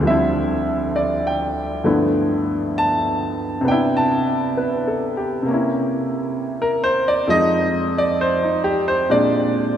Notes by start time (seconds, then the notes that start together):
Already playing: A4
0.00 D2 D3 F3
0.06 G3 C4 E5
0.10 E4
0.96 D5
1.27 G5
1.84 G2 D3 F3 A3 B3 E4
2.78 A5
3.61 C3 B3
3.68 D4 E4 G5
3.97 A5
4.57 B4
4.87 A4
5.17 G4
5.42 C3 A#3
5.50 C#4 E4
6.62 A#4
6.84 C5
7.08 D5
7.27 F2 F3 G#3 D#5
7.32 D#4
7.98 D5
8.21 C5
8.43 D#4
8.64 G4
8.88 C5
9.10 A#2 G#3 C4 D4 D5